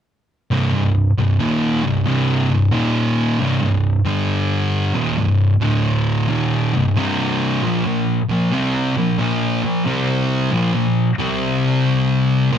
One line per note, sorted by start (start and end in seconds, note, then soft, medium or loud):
0.51 0.71 C2 loud
0.51 0.72 G2 medium
0.73 1.08 C2 medium
0.73 1.09 G2 medium
1.18 1.39 C2 medium
1.18 1.39 G2 medium
1.39 1.83 D#2 medium
1.39 1.83 A#2 medium
1.39 1.83 D#3 medium
1.83 2.04 C2 medium
1.83 2.05 G2 medium
2.06 2.48 C2 medium
2.06 2.49 G2 medium
2.06 2.50 C3 medium
2.49 2.71 C2 medium
2.49 2.72 G2 medium
2.71 3.38 D#2 medium
2.71 3.38 A#2 medium
2.71 3.38 D#3 loud
3.39 3.60 C2 medium
3.39 3.61 G2 medium
3.61 3.97 C2 medium
3.61 3.98 G2 medium
4.05 4.93 G2 medium
4.05 4.94 D3 medium
4.05 4.94 G3 medium
4.94 5.16 D#2 medium
4.94 5.16 A#2 medium
5.17 5.53 C2 medium
5.17 5.53 G2 medium
5.62 6.27 D2 medium
5.62 6.28 A2 medium
5.62 6.28 D3 medium
6.29 6.72 D#2 medium
6.29 6.72 A#2 loud
6.29 6.73 D#3 loud
6.74 6.95 C2 medium
6.74 6.96 G2 medium
6.96 7.61 C2 medium
6.96 7.62 G2 medium
6.96 7.62 C3 medium
7.64 7.84 A#2 medium
7.64 7.84 F3 loud
7.86 8.21 A#2 medium
7.86 8.21 F3 medium
8.31 8.52 A#2 medium
8.31 8.52 F3 medium
8.53 8.95 C3 medium
8.53 8.96 G3 medium
8.53 8.96 C4 medium
8.97 9.17 A#2 medium
8.97 9.18 F3 medium
9.18 9.61 A#2 medium
9.18 9.62 F3 medium
9.18 9.62 A#3 medium
9.63 9.85 A#2 medium
9.63 9.85 F3 medium
9.85 10.50 C3 medium
9.85 10.50 G3 medium
9.85 10.50 C4 medium
10.51 10.72 A#2 medium
10.51 10.72 F3 medium
10.73 11.09 A#2 medium
10.73 11.10 F3 medium
11.18 12.50 C3 medium
11.18 12.50 G3 medium
11.18 12.51 C4 loud
12.52 12.58 A#2 loud
12.52 12.58 F3 medium
12.52 12.58 A#3 loud